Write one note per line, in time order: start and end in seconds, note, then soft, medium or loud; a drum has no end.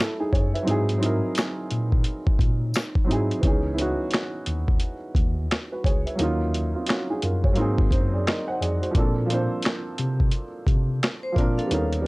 0.00 0.63 F#3 medium
0.00 0.69 C#4 medium
0.00 0.69 E4 medium
0.00 0.69 F#4 medium
0.00 0.69 A4 medium
0.00 finger snap medium
0.00 snare loud
0.00 closed hi-hat medium
0.20 0.32 D#4 medium
0.20 0.32 G#4 medium
0.33 0.53 F#2 medium
0.33 0.54 G#4 medium
0.33 0.53 C#5 medium
0.33 kick medium
0.33 closed hi-hat medium
0.54 0.87 B4 medium
0.54 0.87 E5 medium
0.54 closed hi-hat soft
0.63 0.95 F#3 medium
0.63 0.96 C4 medium
0.67 1.19 G#2 medium
0.67 0.97 D#4 medium
0.67 0.98 E4 medium
0.67 0.99 G#4 loud
0.67 closed hi-hat medium
0.89 closed hi-hat soft
0.98 2.15 F#3 medium
0.98 2.16 C4 medium
0.98 2.17 D#4 medium
1.03 2.18 E4 medium
1.03 2.19 A#4 medium
1.03 closed hi-hat medium
1.35 finger snap medium
1.35 snare loud
1.35 closed hi-hat medium
1.35 tambourine medium
1.71 2.03 A#2 medium
1.71 closed hi-hat medium
1.92 kick medium
2.04 closed hi-hat medium
2.27 kick medium
2.39 2.71 A#2 medium
2.39 kick medium
2.39 closed hi-hat medium
2.74 finger snap medium
2.74 snare loud
2.74 closed hi-hat medium
2.74 tambourine medium
2.95 kick medium
3.04 3.36 F#3 medium
3.04 3.37 C4 medium
3.08 3.29 G#2 medium
3.08 3.38 D#4 medium
3.08 3.39 E4 medium
3.08 3.40 G#4 medium
3.08 closed hi-hat medium
3.31 closed hi-hat soft
3.39 3.71 E3 medium
3.39 3.72 B3 medium
3.39 3.73 C#4 medium
3.39 kick loud
3.39 closed hi-hat medium
3.43 3.95 C#2 medium
3.43 3.74 D#4 medium
3.43 3.75 G#4 medium
3.74 4.92 B3 medium
3.74 4.91 E4 medium
3.78 4.93 C#4 medium
3.78 4.94 D#4 medium
3.78 4.95 F#4 medium
3.78 closed hi-hat medium
4.11 finger snap medium
4.11 snare loud
4.11 closed hi-hat medium
4.46 4.78 D#2 medium
4.46 closed hi-hat medium
4.68 kick medium
4.80 closed hi-hat medium
5.15 5.47 D#2 loud
5.15 kick medium
5.15 closed hi-hat medium
5.51 finger snap medium
5.51 snare loud
5.51 closed hi-hat medium
5.72 5.84 F#4 medium
5.72 5.84 B4 medium
5.84 6.04 C#2 medium
5.84 6.06 G#4 medium
5.84 6.05 C#5 medium
5.84 kick medium
5.84 closed hi-hat medium
6.06 6.39 B4 medium
6.06 6.39 E5 medium
6.06 closed hi-hat soft
6.15 6.47 F#3 medium
6.15 6.48 A#3 medium
6.15 closed hi-hat medium
6.20 6.71 D#2 loud
6.20 6.49 C#4 medium
6.20 6.50 D#4 medium
6.20 6.51 F4 medium
6.54 closed hi-hat medium
6.75 6.88 C4 soft
6.75 6.87 F4 medium
6.87 7.09 C#4 medium
6.87 7.08 F#4 medium
6.87 finger snap medium
6.87 snare loud
6.87 closed hi-hat medium
7.10 7.22 D#4 medium
7.10 7.22 G#4 medium
7.22 7.54 F#2 medium
7.22 7.43 F4 medium
7.22 7.43 A#4 medium
7.22 closed hi-hat medium
7.44 7.60 G#4 soft
7.44 7.77 C#5 medium
7.44 kick medium
7.53 8.44 F#3 medium
7.53 8.45 A#3 medium
7.53 closed hi-hat medium
7.57 7.89 G#2 medium
7.57 8.46 C4 medium
7.57 8.47 D#4 medium
7.57 7.93 G#4 medium
7.78 kick medium
7.91 8.23 F#2 loud
7.91 8.12 F#4 soft
7.91 8.12 C5 medium
7.91 kick medium
7.91 closed hi-hat medium
8.13 8.26 G#4 medium
8.13 8.25 D5 medium
8.27 8.47 A#4 medium
8.27 8.47 D#5 medium
8.27 finger snap medium
8.27 snare loud
8.27 closed hi-hat medium
8.48 8.60 C5 medium
8.48 8.60 F#5 medium
8.61 8.80 F2 medium
8.61 8.81 G#4 medium
8.61 8.81 D5 medium
8.61 closed hi-hat medium
8.82 9.15 F#4 medium
8.82 9.15 C5 medium
8.82 closed hi-hat soft
8.91 9.23 F3 medium
8.91 9.24 A#3 medium
8.91 9.25 C4 medium
8.91 kick loud
8.95 9.47 A#2 loud
8.95 9.26 D4 medium
8.95 9.27 A4 medium
8.95 closed hi-hat medium
9.26 10.43 F3 medium
9.26 10.44 A#3 medium
9.26 10.45 C4 medium
9.30 10.46 D4 medium
9.30 10.47 C5 medium
9.30 closed hi-hat medium
9.62 finger snap medium
9.62 snare loud
9.62 closed hi-hat medium
9.98 10.30 C3 medium
9.98 closed hi-hat medium
10.20 kick medium
10.31 closed hi-hat medium
10.67 10.99 C3 medium
10.67 kick medium
10.67 closed hi-hat medium
11.03 finger snap medium
11.03 snare loud
11.03 closed hi-hat medium
11.23 11.36 C5 medium
11.32 11.64 F3 medium
11.32 11.65 A#3 medium
11.32 kick medium
11.36 11.56 A#2 medium
11.36 11.66 C4 medium
11.36 11.67 D4 medium
11.36 11.57 F4 medium
11.36 11.68 A#4 medium
11.36 11.57 D5 medium
11.36 closed hi-hat medium
11.58 11.91 A4 medium
11.58 11.90 F5 medium
11.58 closed hi-hat soft
11.67 12.07 D#2 loud
11.67 11.99 G3 medium
11.67 12.00 B3 medium
11.67 12.01 C#4 medium
11.67 closed hi-hat medium
11.73 12.02 D#4 medium
11.73 12.02 A#4 medium
11.93 closed hi-hat soft
12.01 12.07 G3 medium
12.01 12.07 B3 medium